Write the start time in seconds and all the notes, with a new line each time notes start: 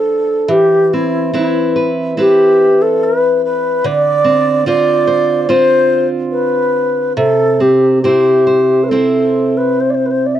Already playing: F3 D4 A4 C5
0.48 E3 G4
0.93 C4 E4
1.33 C4 E4 B4
1.76 B4
2.17 C4 E4 G4 B4
2.82 A4
3.03 B4
3.45 B4
3.84 D3 D5
4.24 C4
4.66 C4 F4 C5 D5
5.07 C5
5.43 D5
5.49 C4 F4 C5
6.31 B4
7.17 C3 A4
7.60 C4 G4
8.02 C4 E4 G4 C5
8.47 C5
8.84 B4
8.89 C4 E4 A4 C5
9.57 B4
9.80 C5
9.90 D5
9.94 C5
10.06 B4
10.11 C5
10.26 D5
10.35 E5